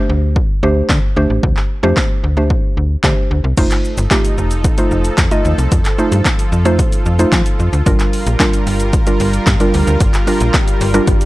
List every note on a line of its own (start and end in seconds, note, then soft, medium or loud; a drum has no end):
0.00 0.39 A3 medium
0.00 0.39 D4 medium
0.00 0.39 G4 medium
0.00 0.39 C5 loud
0.09 0.39 D2 loud
0.36 kick loud
0.63 0.83 D2 medium
0.63 0.97 A3 loud
0.63 0.97 D4 medium
0.63 0.97 G4 medium
0.63 0.97 C5 loud
0.89 0.99 D3 loud
0.89 kick loud
0.89 snare medium
0.89 clap loud
1.16 1.27 D2 medium
1.16 1.59 A3 medium
1.16 1.59 D4 medium
1.16 1.60 G4 medium
1.16 1.60 C5 loud
1.30 1.40 A1 medium
1.43 1.53 D2 loud
1.43 kick loud
1.57 clap medium
1.83 1.93 F2 medium
1.83 2.18 A3 loud
1.83 2.18 D4 medium
1.83 2.18 G4 medium
1.83 2.18 C5 loud
1.97 kick loud
1.97 snare medium
1.97 clap loud
2.24 2.53 D2 medium
2.37 2.80 A3 medium
2.37 2.80 D4 medium
2.37 2.80 G4 medium
2.37 2.80 C5 medium
2.50 kick loud
2.77 2.97 D2 medium
3.04 3.14 D3 loud
3.04 3.38 A3 medium
3.04 3.38 D4 medium
3.04 3.38 G4 medium
3.04 3.38 C5 loud
3.04 kick loud
3.04 snare medium
3.04 clap loud
3.31 3.41 D2 medium
3.44 3.54 C2 medium
3.57 3.67 F1 loud
3.57 7.82 F3 medium
3.57 3.92 A3 loud
3.57 5.70 D#4 medium
3.57 3.92 D#4 medium
3.57 3.92 F4 medium
3.57 7.82 A4 medium
3.57 3.92 C5 loud
3.57 kick loud
3.57 closed hi-hat medium
3.57 crash medium
3.57 shaker medium
3.71 clap medium
3.71 closed hi-hat medium
3.71 shaker medium
3.85 shaker soft
3.98 4.08 G1 loud
3.98 closed hi-hat medium
3.98 shaker medium
4.11 4.54 A3 loud
4.11 4.54 D#4 medium
4.11 4.54 F4 medium
4.11 4.54 G4 loud
4.11 kick loud
4.11 snare medium
4.11 clap loud
4.11 closed hi-hat medium
4.11 shaker medium
4.25 closed hi-hat medium
4.25 shaker medium
4.38 4.67 F1 medium
4.38 shaker medium
4.51 closed hi-hat medium
4.51 shaker medium
4.64 kick loud
4.64 closed hi-hat medium
4.64 shaker medium
4.78 5.12 A3 medium
4.78 5.12 D#4 medium
4.78 5.13 F4 medium
4.78 5.13 C5 medium
4.78 closed hi-hat medium
4.78 shaker medium
4.91 5.11 F1 medium
4.91 shaker soft
5.05 closed hi-hat medium
5.05 shaker medium
5.18 5.28 F2 loud
5.18 kick loud
5.18 snare medium
5.18 clap loud
5.18 closed hi-hat medium
5.18 shaker medium
5.31 5.74 A3 medium
5.31 5.74 D#4 medium
5.31 5.74 F4 medium
5.31 5.75 D#5 loud
5.31 closed hi-hat medium
5.31 shaker medium
5.45 5.55 D#2 medium
5.45 shaker soft
5.58 5.68 C2 medium
5.58 closed hi-hat soft
5.58 shaker medium
5.72 5.82 F2 loud
5.72 11.25 F4 medium
5.72 kick loud
5.72 closed hi-hat medium
5.72 shaker medium
5.85 clap medium
5.85 closed hi-hat medium
5.85 shaker soft
5.98 6.41 A3 medium
5.98 6.41 D#4 medium
5.98 6.42 F4 medium
5.98 6.42 C5 medium
5.98 shaker soft
6.12 6.22 G2 medium
6.12 closed hi-hat medium
6.12 shaker medium
6.25 kick loud
6.25 snare medium
6.25 clap loud
6.25 closed hi-hat medium
6.25 shaker medium
6.39 closed hi-hat medium
6.39 shaker medium
6.52 6.82 F2 medium
6.52 shaker medium
6.65 7.00 A3 loud
6.65 7.00 D#4 medium
6.65 7.00 F4 medium
6.65 7.00 C5 loud
6.65 closed hi-hat medium
6.65 shaker medium
6.79 kick loud
6.79 closed hi-hat medium
6.79 shaker medium
6.92 closed hi-hat medium
6.92 shaker medium
7.06 7.26 F2 medium
7.06 shaker soft
7.19 7.62 A3 medium
7.19 7.62 D#4 medium
7.19 7.62 F4 medium
7.19 7.62 C5 medium
7.19 closed hi-hat medium
7.19 shaker medium
7.32 7.42 F3 loud
7.32 kick loud
7.32 snare medium
7.32 clap loud
7.32 closed hi-hat medium
7.32 shaker medium
7.46 closed hi-hat medium
7.46 shaker medium
7.60 7.69 F2 medium
7.60 shaker soft
7.73 7.83 D2 medium
7.73 closed hi-hat soft
7.73 shaker medium
7.86 7.96 G1 loud
7.86 8.20 G3 loud
7.86 11.25 G3 medium
7.86 8.21 D4 medium
7.86 8.21 F4 medium
7.86 11.25 A#4 loud
7.86 8.21 A#4 loud
7.86 kick loud
7.86 closed hi-hat medium
7.86 shaker medium
8.00 clap medium
8.00 closed hi-hat medium
8.00 shaker medium
8.13 open hi-hat medium
8.13 shaker medium
8.27 8.36 A#1 medium
8.27 closed hi-hat medium
8.27 shaker medium
8.39 8.82 G3 loud
8.39 8.83 D4 medium
8.39 8.83 F4 medium
8.39 8.83 A#4 loud
8.39 kick loud
8.39 snare medium
8.39 clap loud
8.39 closed hi-hat medium
8.39 shaker medium
8.53 closed hi-hat medium
8.53 shaker medium
8.67 8.96 G1 medium
8.67 open hi-hat medium
8.67 shaker medium
8.80 closed hi-hat medium
8.80 shaker medium
8.93 kick loud
8.93 closed hi-hat medium
8.93 shaker medium
9.07 9.41 G3 medium
9.07 9.41 D4 medium
9.07 9.41 F4 medium
9.07 9.41 A#4 medium
9.07 closed hi-hat medium
9.07 shaker medium
9.20 9.40 G1 loud
9.20 open hi-hat medium
9.20 shaker medium
9.33 closed hi-hat medium
9.33 shaker medium
9.47 9.57 G2 loud
9.47 kick loud
9.47 snare medium
9.47 clap loud
9.47 closed hi-hat medium
9.47 shaker medium
9.60 10.03 G3 loud
9.60 10.03 D4 medium
9.60 10.03 F4 medium
9.60 10.03 A#4 loud
9.60 closed hi-hat medium
9.60 shaker medium
9.74 9.84 D2 loud
9.74 open hi-hat medium
9.74 shaker medium
9.87 9.97 D2 medium
9.87 closed hi-hat soft
9.87 shaker medium
10.00 10.10 G1 loud
10.00 kick loud
10.00 closed hi-hat medium
10.00 swell medium
10.00 shaker medium
10.14 clap medium
10.14 closed hi-hat medium
10.14 shaker soft
10.27 10.70 G3 medium
10.27 10.70 D4 medium
10.27 10.70 F4 medium
10.27 10.70 A#4 medium
10.27 open hi-hat medium
10.27 shaker medium
10.40 10.51 A#1 medium
10.40 closed hi-hat medium
10.40 shaker medium
10.54 kick loud
10.54 snare medium
10.54 clap loud
10.54 closed hi-hat medium
10.54 shaker medium
10.68 closed hi-hat medium
10.68 shaker medium
10.81 11.01 G1 loud
10.81 open hi-hat medium
10.81 shaker medium
10.94 11.25 G3 medium
10.94 11.25 D4 medium
10.94 11.25 F4 medium
10.94 11.25 A#4 loud
10.94 closed hi-hat medium
10.94 shaker medium
11.07 11.25 G1 loud
11.07 kick loud
11.07 closed hi-hat medium
11.07 shaker medium
11.21 closed hi-hat medium
11.21 shaker medium